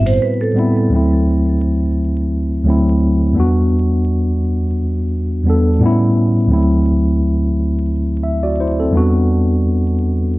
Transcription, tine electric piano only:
Already playing: A2 G3 B3 C4 E4 F#4
0.53 A2 G3 B3
0.57 C4 E4
0.89 D2 F#3 A3
0.94 C4 E4
2.64 D2 F#3 A3
2.68 C4 E4
3.33 E2 G3 B3
3.38 D4 F#4
5.44 E2 G3 B3
5.48 D4 A4
5.79 A2 G3 B3
5.84 C#4 E4
6.47 D2 F#3 A3
6.52 C4 E4
8.23 E5
8.43 F#4 D5
8.60 E4 C5
8.80 C4 A4
8.91 E2 G3 B3
8.96 D4 F#4

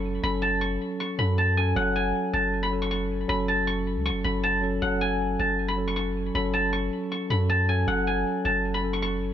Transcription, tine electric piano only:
Already playing: F#3 C#4 A4
0.23 F#3 C#4 A4
1.17 F#3 C#4 A4
1.56 F#3 C#4 A4
1.75 F#3 C#4 A4
2.33 F#3 C#4 A4
2.71 F#3 C#4 A4
3.28 F#3 C#4 A4
4.24 F#3 C#4 A4
4.61 F#3 C#4 A4
4.82 F#3 C#4 A4
5.39 F#3 C#4 A4
5.76 F#3 C#4 A4
6.35 F#3 C#4 A4
7.29 F#3 C#4 A4
7.68 F#3 C#4 A4
7.87 F#3 C#4 A4
8.44 F#3 C#4 A4
8.82 F#3 C#4 A4

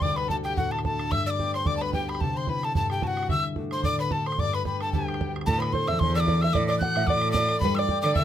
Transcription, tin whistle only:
0.02 D6
0.16 B5
0.30 A5
0.44 G5
0.57 F#5
0.71 A5
0.84 A5
1.11 E6
1.26 E6
1.30 D6
1.54 C6
1.67 D6
1.77 A5
1.81 B5
1.94 G5
2.09 B5
2.21 A5
2.37 C6
2.49 B5
2.64 A5
2.76 A5
2.91 G5
3.03 F#5 A5
3.31 E6
3.73 C6
3.84 D6
4.00 B5
4.12 A5
4.27 C6
4.40 D6
4.54 B5
4.66 B5
4.81 A5
4.93 G5
5.46 A5
5.60 B5
5.73 C6
5.88 E6
5.99 C6
6.15 E6
6.20 D6
6.41 E6
6.53 D6
6.67 D6
6.79 F#6
7.07 D6
7.32 D6
7.60 B5
7.75 D6 E6
8.02 D6
8.15 E6

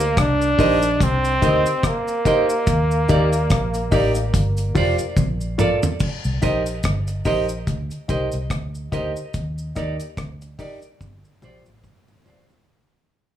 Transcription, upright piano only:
0.59 D#4 G4 A#4 C5
1.42 D#4 G4 A#4 C5
2.25 D#4 G4 A#4 C5
3.08 D#4 G4 A#4 D5
3.91 D#4 G4 A#4 D5
4.75 F4 G4 C5 D5
5.58 F4 A4 A#4 D5
6.42 D#4 G4 A#4 C5
7.25 D#4 G4 A#4 C5
8.08 D#4 G4 A#4 C5
8.92 D#4 G4 A#4 C5
9.75 D#4 G4 A#4 D5
10.58 D#4 G4 A#4 D5
11.42 F4 G4 C5 D5
12.25 F4 G4 C5 D5
12.50 C5 D5

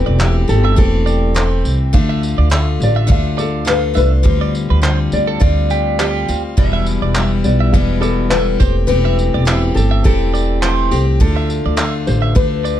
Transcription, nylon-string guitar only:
Already playing: B4
0.04 A4
0.49 A4
0.78 A4
1.94 E5
2.83 D5
3.12 E5
3.39 A4
3.69 B4
3.97 B4
4.26 C5
5.13 D5
5.40 D5
6.59 E5
7.45 D5
7.73 E5
8.01 A4
8.30 B4
8.59 C5
8.87 B4
9.75 A4
10.05 A4
11.21 A4
12.07 C5
12.36 B4

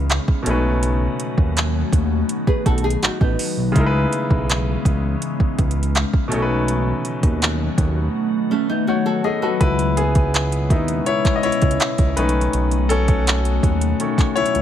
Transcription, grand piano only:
Already playing: C#3 G#3 D#4 E4 B4
0.43 B2 A3
0.47 C#4 D#4 B4
3.72 C#3 G#3
3.76 D#4 E4 A#4
3.86 B4
6.28 B2 A3 C#4
6.34 D#4 A4
6.42 B4
8.88 C#5 F#5
9.25 A4 D#5
9.43 F#4 B4
9.61 E4 B4
9.97 B3 G#4
10.71 B3 D#4 E4
11.06 E4 C#5
11.36 D#5
11.43 E4 C#5
12.17 D#3 A3 C#4 D#4 B4
12.89 C#4 A4
14.00 D#3 A3 C#4
14.36 E4 C#5

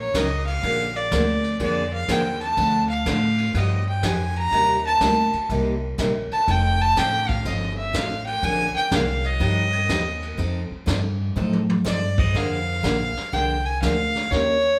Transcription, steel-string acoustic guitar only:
0.14 D#3 F#3 C#4 D#4 A#4
0.63 D3 F3 A#3 D4 G#4
1.12 D3 F3 A#3 D4 G#4
1.60 D3 F3 A#3 D4 G#4
2.09 D3 F3 A#3 D4 G#4
2.57 D3 F3 C4 D4 A4
3.06 D3 F3 C4 D4 A4
3.55 F3 B3 D#4 G4
4.03 F3 B3 D#4 G4
4.53 C3 G3 A#3 D#4 G4
5.02 C3 G3 A#3 D#4 G4
5.50 C3 G3 A#3 D#4 G4
5.98 C3 G3 A#3 D#4 G4
6.48 F3 C4 D#4 A4
6.96 F3 C4 D#4 A4
7.45 F3 C4 D#4 A4
7.93 F3 C4 D#4 A4
8.43 D3 F3 A#3 D4 G#4
8.91 D3 F3 A#3 D4 G#4
9.40 F3 B3 D#4 G4
9.89 F3 B3 D#4 G4
10.38 F3 C4 D#4 A4
10.86 F3 C4 D#4 A4
11.36 F3 C4 D#4 A4
11.84 F3 C4 D#4 A4
12.34 D3 F3 A#3 D4 G#4
12.83 D3 F3 A#3 D4 G#4
13.32 D3 F3 A#3 D4 G#4
13.82 D3 F3 A#3 D4 G#4
14.31 D#3 A#3 C#4 G4 A#4

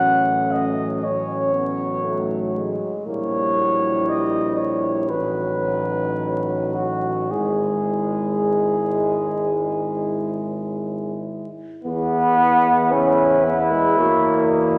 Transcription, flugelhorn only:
Already playing: F#5
0.52 D#5
1.04 C#5
3.07 C#5
4.09 D#5
4.57 C#5
5.10 B4
6.74 F#4
7.31 G#4
11.84 B4
13.98 C#5
14.49 D#5

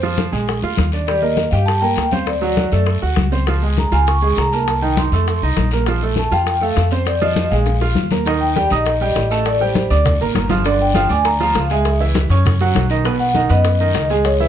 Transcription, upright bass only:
Already playing: F2
0.32 A#1
0.62 D2
0.78 D#2
1.52 G2
1.97 D2
2.72 F#2
3.03 D2
3.17 C#2
3.92 C#2
4.37 C2
5.12 F2
5.42 C2
5.57 A#1
6.31 F2
6.77 F2
7.51 A#1
7.96 D#2
8.71 A#1
9.16 A1
9.91 D2
10.20 G#1
10.35 G1
11.10 D2
11.55 C#2
12.29 F#2
12.75 B1
13.50 F#2
13.94 C#2

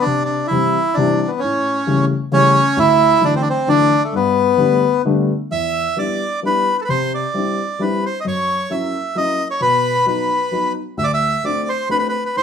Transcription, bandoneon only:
0.01 D4
0.25 D4
0.47 E4
0.94 D4
1.27 B3
1.39 C#4
2.33 C#4
2.79 E4
3.25 D4
3.36 C4
3.42 D4
3.50 C4
3.69 D4
4.04 A3
4.16 B3
5.52 E5
5.99 D5
6.46 B4
6.78 A4 B4
6.84 B4
6.89 C5
7.15 D5
7.82 B4
8.06 C5
8.20 D#5
8.28 C#5
8.71 E5
9.17 D#5
9.51 C#5
9.62 B4
10.08 B4
10.98 E5
11.04 D5
11.14 E5
11.45 D5
11.69 C5
11.91 B4
11.99 B4
12.09 B4
12.25 B4
12.37 C5

